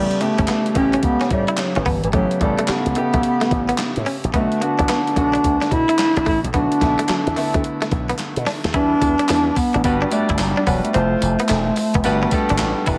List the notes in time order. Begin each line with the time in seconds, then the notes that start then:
Already playing: C#3 G3 A3 B3 G4
0.11 closed hi-hat
0.21 C#3 A3 B3 G4, muted clean electric guitar stroke, closed hi-hat
0.38 G1 C#4, kick, closed hi-hat
0.48 B3, snare, clap, closed hi-hat
0.66 closed hi-hat
0.75 A1 C#3 A3 B3 C#4 G4, muted clean electric guitar stroke, kick, closed hi-hat
0.93 C#4, closed hi-hat
1.03 C#2 B3, kick, closed hi-hat
1.21 C#4, snare, closed hi-hat
1.30 A2 G3, muted clean electric guitar stroke, kick, closed hi-hat
1.48 E4, closed hi-hat
1.57 F#3, muted clean electric guitar stroke, snare, clap, closed hi-hat
1.75 A1 E3 C#4, closed hi-hat
1.86 G1 B3, kick, open hi-hat
2.04 G#1 E3, closed hi-hat
2.13 A1 C#3 F#3 A3 B3 G4, kick, closed hi-hat
2.31 closed hi-hat
2.41 A1 C#3 G3 A3 B3 A4, muted clean electric guitar stroke, kick, closed hi-hat
2.58 A3, closed hi-hat
2.68 G3 B3, muted slap bass stroke, snare, clap, closed hi-hat
2.86 C#2, closed hi-hat
2.95 C#3 A3 B3 G4, muted clean electric guitar stroke, closed hi-hat
3.14 B1 A3, kick, closed hi-hat
3.23 closed hi-hat
3.41 A3, snare, closed hi-hat
3.51 A1, muted clean electric guitar stroke, kick, closed hi-hat
3.69 B3, closed hi-hat
3.78 snare, clap, closed hi-hat
3.96 A2, closed hi-hat
4.06 C#4, open hi-hat
4.24 A#1, closed hi-hat
4.34 B1 D3 A3 B3 F#4, kick, closed hi-hat
4.52 closed hi-hat
4.61 D3 A3 B3 D4 F#4, muted clean electric guitar stroke, closed hi-hat
4.79 A1 D4, kick, closed hi-hat
4.89 B3, snare, clap, closed hi-hat
5.07 closed hi-hat
5.16 B1 D3 A3 B3 D4 F#4, muted clean electric guitar stroke, kick, closed hi-hat
5.33 D4, closed hi-hat
5.44 D2, kick, closed hi-hat
5.61 D4, snare, closed hi-hat
5.71 B2 E4, muted clean electric guitar stroke, kick, closed hi-hat
5.89 E4, closed hi-hat
5.98 muted clean electric guitar stroke, snare, clap, closed hi-hat
6.17 B1 D4, closed hi-hat
6.26 A1 A3 E4, kick, open hi-hat
6.44 A#1, closed hi-hat
6.54 B1 D3 A3 B3 D4 F#4, kick, closed hi-hat
6.72 closed hi-hat
6.81 B1 D3 A3 B3 E4, muted clean electric guitar stroke, kick, snare, closed hi-hat
6.99 A3, closed hi-hat
7.08 F#3, muted slap bass stroke, snare, clap, closed hi-hat
7.27 E2, closed hi-hat
7.36 D3 A3 B3 E4, muted clean electric guitar stroke, open hi-hat
7.54 D2 A3, kick, closed hi-hat
7.64 closed hi-hat
7.82 A3, snare, closed hi-hat
7.91 B1, muted clean electric guitar stroke, kick, closed hi-hat
8.09 B3, closed hi-hat
8.18 snare, clap, closed hi-hat
8.36 B2, closed hi-hat
8.46 D4, snare, open hi-hat
8.64 D#2, snare, closed hi-hat
8.74 E2 G3 B3 D4 E4 B4, kick, closed hi-hat
9.02 E2, muted clean electric guitar stroke, kick, closed hi-hat, tambourine
9.19 D4, closed hi-hat
9.29 E2 B3, snare, clap, closed hi-hat, tambourine
9.56 B3, muted clean electric guitar stroke, kick, open hi-hat, tambourine
9.74 A1 D4, closed hi-hat
9.84 G1 G3 B3 D4 F#4 B4, kick, closed hi-hat, tambourine
10.02 D4
10.11 G3 A3 B3 D4 F#4 D5, muted clean electric guitar stroke, closed hi-hat, tambourine
10.29 G1 E4, kick, closed hi-hat
10.38 F#1 G3, muted clean electric guitar stroke, snare, clap, closed hi-hat, tambourine
10.57 D4
10.67 E1 F#3 G3 B3 D4 F#4 B4, kick, open hi-hat, tambourine
10.84 A3, closed hi-hat
10.94 F1 A3 C4 E4 F4 C5, closed hi-hat
11.22 F1, muted clean electric guitar stroke, closed hi-hat, tambourine
11.40 B3, closed hi-hat
11.49 E1 A3, snare, clap, closed hi-hat, tambourine
11.76 muted clean electric guitar stroke, open hi-hat, tambourine
11.94 F1 B3, kick, closed hi-hat
12.04 G1 G3 B3 D4 F#4 B4, closed hi-hat, tambourine
12.23 B3
12.31 G3 B3 D4 F#4 A4, muted clean electric guitar stroke, kick, closed hi-hat, tambourine
12.49 G1 D4, closed hi-hat
12.58 A1, snare, clap, closed hi-hat, tambourine
12.86 D#1 G3 B3 D4 E4 F#4 B4, kick, open hi-hat, tambourine